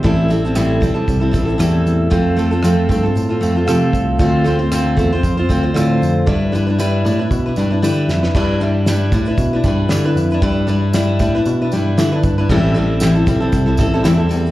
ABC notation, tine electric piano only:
X:1
M:4/4
L:1/8
Q:"Swing 16ths" 1/4=116
K:Gmix
V:1 name="Tine electric piano" clef=bass
A,,,3 B,,, C,, A,,, E,, E,, | F,,3 G,, A,, F,, C, C,, | D,,3 E,, F,, D,, A,, F,, | G,,3 A,, B,, G,, D, F,, |
G,,3 A,, B,, G,, D, F,, | G,,3 A,, B,, G,, D, G,, | A,,,3 B,,, C,, A,,, E,, E,, |]